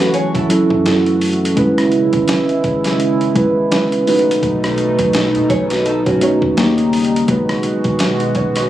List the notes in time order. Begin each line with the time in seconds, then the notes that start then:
Already playing: F#1 E3 F#3 A3 C#4 E4 F#4 A4
0.00 F#4 B4, snare
0.14 G#4 C#5, closed hi-hat
0.35 F#1 E4 A4, kick, closed hi-hat
0.49 F#3 C#4 E4 A4, closed hi-hat
0.70 F#2, kick
0.84 F#3 C#4 E4 A4, snare, closed hi-hat
1.06 closed hi-hat
1.21 closed hi-hat, open hi-hat
1.33 closed hi-hat
1.45 closed hi-hat
1.55 G#1 C#3 G#3 C#4 E4 B4, kick, closed hi-hat
1.78 cross-stick, closed hi-hat
1.92 B1, closed hi-hat
2.13 G#1, kick, closed hi-hat
2.28 snare, closed hi-hat
2.49 closed hi-hat
2.64 G#1, kick, closed hi-hat
2.84 snare, closed hi-hat
3.00 closed hi-hat
3.21 closed hi-hat
3.34 G#1 G#3 C#4 E4 B4, kick, closed hi-hat
3.70 G#3 C#4 E4 B4, snare, closed hi-hat
3.92 closed hi-hat
4.06 B2 A3 D#4 F#4 B4, closed hi-hat, open hi-hat
4.19 closed hi-hat
4.31 closed hi-hat
4.43 B1, kick, closed hi-hat
4.64 cross-stick, closed hi-hat
4.78 A1, closed hi-hat
4.99 B1, kick, closed hi-hat
5.13 snare, closed hi-hat
5.35 B2, closed hi-hat
5.50 B1 G#4 C#5, kick, closed hi-hat
5.70 F#4 B4, snare, closed hi-hat
5.85 D#4 A4, closed hi-hat
6.06 B1 C#4 F#4, kick, closed hi-hat
6.21 A3 D#4 F#4 C#5, closed hi-hat
6.42 D#2, kick
6.56 C#3 G3 A#3 D#4 G4 C#5, snare, closed hi-hat
6.78 closed hi-hat
6.93 closed hi-hat, open hi-hat
7.05 closed hi-hat
7.16 closed hi-hat
7.27 G#1 B2 G#3 D#4 F#4 B4, kick, closed hi-hat
7.49 cross-stick, closed hi-hat
7.63 B1, closed hi-hat
7.84 G#1, kick, closed hi-hat
7.99 snare, closed hi-hat
8.20 closed hi-hat
8.35 G#1 C#5, kick, closed hi-hat
8.56 D#5, cross-stick, closed hi-hat